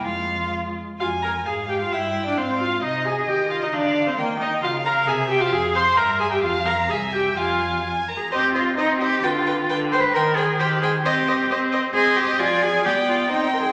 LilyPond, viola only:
\new Staff \with { instrumentName = "Viola" } { \time 2/4 \key f \minor \tempo 4 = 132 aes4. r8 | f'8 bes'8 aes'8 g'16 f'16 | e'8. d'16 c'8 f'8 | ees'8 aes'8 g'8 f'16 ees'16 |
d'8. c'16 bes8 ees'8 | f'8 bes'8 aes'8 g'16 f'16 | aes'8 c''8 bes'8 aes'16 g'16 | f'8 bes'8 aes'8 g'8 |
f'4 r4 | \key c \minor c'4 c'4 | d4 d4 | ees4 ees4 |
c'4 c'4 | c'4 f4 | b4 c'4 | }